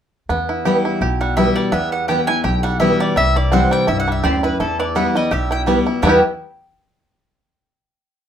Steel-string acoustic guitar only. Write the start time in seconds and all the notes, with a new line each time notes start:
0.30 E2
0.65 E3 G3 B3 E4
1.01 B2
1.37 E3 G3 B3 E4
1.74 E2
2.09 E3 G3 B3 E4
2.28 B3 E4
2.45 B2
2.80 E3 G3 B3 E4
3.17 C3
3.52 E3 G3 C4 E4
3.88 G2
4.24 F#2
4.60 E2
4.95 E3 G3 B3 E4
5.15 B3 E4
5.31 B2
5.66 E3 G3 B3 E4
5.86 B3 E4
6.02 E2 B2 E3 G3 B3 E4